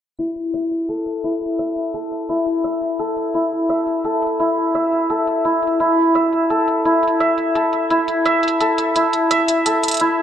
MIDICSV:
0, 0, Header, 1, 3, 480
1, 0, Start_track
1, 0, Tempo, 350877
1, 254, Time_signature, 4, 2, 24, 8
1, 13986, End_track
2, 0, Start_track
2, 0, Title_t, "Santur"
2, 0, Program_c, 0, 15
2, 256, Note_on_c, 0, 64, 73
2, 734, Note_on_c, 0, 76, 94
2, 1214, Note_on_c, 0, 69, 75
2, 1689, Note_off_c, 0, 64, 0
2, 1694, Note_on_c, 0, 64, 73
2, 2168, Note_off_c, 0, 76, 0
2, 2173, Note_on_c, 0, 76, 93
2, 2647, Note_off_c, 0, 69, 0
2, 2653, Note_on_c, 0, 69, 69
2, 3129, Note_off_c, 0, 64, 0
2, 3135, Note_on_c, 0, 64, 77
2, 3609, Note_off_c, 0, 76, 0
2, 3614, Note_on_c, 0, 76, 88
2, 4089, Note_off_c, 0, 69, 0
2, 4094, Note_on_c, 0, 69, 77
2, 4569, Note_off_c, 0, 64, 0
2, 4575, Note_on_c, 0, 64, 69
2, 5051, Note_off_c, 0, 76, 0
2, 5056, Note_on_c, 0, 76, 88
2, 5531, Note_off_c, 0, 69, 0
2, 5537, Note_on_c, 0, 69, 68
2, 6010, Note_off_c, 0, 64, 0
2, 6016, Note_on_c, 0, 64, 77
2, 6491, Note_off_c, 0, 76, 0
2, 6497, Note_on_c, 0, 76, 92
2, 6970, Note_off_c, 0, 69, 0
2, 6976, Note_on_c, 0, 69, 75
2, 7449, Note_off_c, 0, 64, 0
2, 7455, Note_on_c, 0, 64, 70
2, 7931, Note_off_c, 0, 64, 0
2, 7936, Note_on_c, 0, 64, 76
2, 8411, Note_off_c, 0, 76, 0
2, 8417, Note_on_c, 0, 76, 91
2, 8890, Note_off_c, 0, 69, 0
2, 8895, Note_on_c, 0, 69, 77
2, 9368, Note_off_c, 0, 64, 0
2, 9374, Note_on_c, 0, 64, 74
2, 9849, Note_off_c, 0, 76, 0
2, 9855, Note_on_c, 0, 76, 91
2, 10328, Note_off_c, 0, 69, 0
2, 10334, Note_on_c, 0, 69, 71
2, 10809, Note_off_c, 0, 64, 0
2, 10814, Note_on_c, 0, 64, 76
2, 11289, Note_off_c, 0, 76, 0
2, 11295, Note_on_c, 0, 76, 97
2, 11768, Note_off_c, 0, 69, 0
2, 11774, Note_on_c, 0, 69, 77
2, 12249, Note_off_c, 0, 64, 0
2, 12254, Note_on_c, 0, 64, 69
2, 12727, Note_off_c, 0, 76, 0
2, 12733, Note_on_c, 0, 76, 98
2, 13208, Note_off_c, 0, 69, 0
2, 13213, Note_on_c, 0, 69, 76
2, 13688, Note_off_c, 0, 64, 0
2, 13693, Note_on_c, 0, 64, 84
2, 13986, Note_off_c, 0, 64, 0
2, 13986, Note_off_c, 0, 69, 0
2, 13986, Note_off_c, 0, 76, 0
2, 13986, End_track
3, 0, Start_track
3, 0, Title_t, "Drums"
3, 256, Note_on_c, 9, 42, 75
3, 392, Note_off_c, 9, 42, 0
3, 496, Note_on_c, 9, 42, 59
3, 633, Note_off_c, 9, 42, 0
3, 736, Note_on_c, 9, 42, 82
3, 873, Note_off_c, 9, 42, 0
3, 977, Note_on_c, 9, 42, 35
3, 1114, Note_off_c, 9, 42, 0
3, 1216, Note_on_c, 9, 42, 73
3, 1352, Note_off_c, 9, 42, 0
3, 1454, Note_on_c, 9, 42, 66
3, 1591, Note_off_c, 9, 42, 0
3, 1694, Note_on_c, 9, 42, 76
3, 1831, Note_off_c, 9, 42, 0
3, 1935, Note_on_c, 9, 42, 49
3, 1999, Note_off_c, 9, 42, 0
3, 1999, Note_on_c, 9, 42, 62
3, 2136, Note_off_c, 9, 42, 0
3, 2174, Note_on_c, 9, 42, 75
3, 2311, Note_off_c, 9, 42, 0
3, 2414, Note_on_c, 9, 42, 61
3, 2551, Note_off_c, 9, 42, 0
3, 2655, Note_on_c, 9, 42, 78
3, 2791, Note_off_c, 9, 42, 0
3, 2895, Note_on_c, 9, 42, 35
3, 3032, Note_off_c, 9, 42, 0
3, 3134, Note_on_c, 9, 42, 71
3, 3270, Note_off_c, 9, 42, 0
3, 3374, Note_on_c, 9, 42, 69
3, 3511, Note_off_c, 9, 42, 0
3, 3613, Note_on_c, 9, 42, 77
3, 3750, Note_off_c, 9, 42, 0
3, 3853, Note_on_c, 9, 42, 47
3, 3990, Note_off_c, 9, 42, 0
3, 4093, Note_on_c, 9, 42, 74
3, 4230, Note_off_c, 9, 42, 0
3, 4335, Note_on_c, 9, 42, 57
3, 4471, Note_off_c, 9, 42, 0
3, 4573, Note_on_c, 9, 42, 76
3, 4710, Note_off_c, 9, 42, 0
3, 5054, Note_on_c, 9, 42, 77
3, 5190, Note_off_c, 9, 42, 0
3, 5294, Note_on_c, 9, 42, 63
3, 5431, Note_off_c, 9, 42, 0
3, 5534, Note_on_c, 9, 42, 75
3, 5670, Note_off_c, 9, 42, 0
3, 5775, Note_on_c, 9, 42, 48
3, 5839, Note_off_c, 9, 42, 0
3, 5839, Note_on_c, 9, 42, 63
3, 5975, Note_off_c, 9, 42, 0
3, 6015, Note_on_c, 9, 42, 76
3, 6152, Note_off_c, 9, 42, 0
3, 6495, Note_on_c, 9, 42, 77
3, 6631, Note_off_c, 9, 42, 0
3, 6735, Note_on_c, 9, 42, 33
3, 6872, Note_off_c, 9, 42, 0
3, 6975, Note_on_c, 9, 42, 72
3, 7112, Note_off_c, 9, 42, 0
3, 7215, Note_on_c, 9, 42, 65
3, 7351, Note_off_c, 9, 42, 0
3, 7455, Note_on_c, 9, 42, 68
3, 7592, Note_off_c, 9, 42, 0
3, 7696, Note_on_c, 9, 42, 47
3, 7762, Note_off_c, 9, 42, 0
3, 7762, Note_on_c, 9, 42, 61
3, 7899, Note_off_c, 9, 42, 0
3, 7936, Note_on_c, 9, 42, 71
3, 8073, Note_off_c, 9, 42, 0
3, 8415, Note_on_c, 9, 42, 75
3, 8552, Note_off_c, 9, 42, 0
3, 8657, Note_on_c, 9, 42, 34
3, 8793, Note_off_c, 9, 42, 0
3, 8896, Note_on_c, 9, 42, 72
3, 9032, Note_off_c, 9, 42, 0
3, 9137, Note_on_c, 9, 42, 58
3, 9273, Note_off_c, 9, 42, 0
3, 9377, Note_on_c, 9, 42, 72
3, 9513, Note_off_c, 9, 42, 0
3, 9617, Note_on_c, 9, 42, 46
3, 9681, Note_off_c, 9, 42, 0
3, 9681, Note_on_c, 9, 42, 59
3, 9818, Note_off_c, 9, 42, 0
3, 9855, Note_on_c, 9, 42, 75
3, 9992, Note_off_c, 9, 42, 0
3, 10094, Note_on_c, 9, 42, 57
3, 10231, Note_off_c, 9, 42, 0
3, 10334, Note_on_c, 9, 42, 76
3, 10471, Note_off_c, 9, 42, 0
3, 10574, Note_on_c, 9, 42, 34
3, 10711, Note_off_c, 9, 42, 0
3, 10813, Note_on_c, 9, 42, 67
3, 10950, Note_off_c, 9, 42, 0
3, 11055, Note_on_c, 9, 42, 63
3, 11192, Note_off_c, 9, 42, 0
3, 11294, Note_on_c, 9, 42, 70
3, 11431, Note_off_c, 9, 42, 0
3, 11534, Note_on_c, 9, 42, 46
3, 11598, Note_off_c, 9, 42, 0
3, 11598, Note_on_c, 9, 42, 56
3, 11735, Note_off_c, 9, 42, 0
3, 11772, Note_on_c, 9, 42, 73
3, 11909, Note_off_c, 9, 42, 0
3, 12015, Note_on_c, 9, 42, 62
3, 12151, Note_off_c, 9, 42, 0
3, 12254, Note_on_c, 9, 42, 76
3, 12390, Note_off_c, 9, 42, 0
3, 12493, Note_on_c, 9, 42, 35
3, 12630, Note_off_c, 9, 42, 0
3, 12734, Note_on_c, 9, 42, 74
3, 12871, Note_off_c, 9, 42, 0
3, 12974, Note_on_c, 9, 42, 63
3, 13111, Note_off_c, 9, 42, 0
3, 13214, Note_on_c, 9, 42, 71
3, 13350, Note_off_c, 9, 42, 0
3, 13454, Note_on_c, 9, 42, 45
3, 13520, Note_off_c, 9, 42, 0
3, 13520, Note_on_c, 9, 42, 55
3, 13562, Note_off_c, 9, 42, 0
3, 13562, Note_on_c, 9, 42, 45
3, 13602, Note_off_c, 9, 42, 0
3, 13602, Note_on_c, 9, 42, 36
3, 13638, Note_off_c, 9, 42, 0
3, 13638, Note_on_c, 9, 42, 29
3, 13675, Note_off_c, 9, 42, 0
3, 13675, Note_on_c, 9, 42, 24
3, 13812, Note_off_c, 9, 42, 0
3, 13986, End_track
0, 0, End_of_file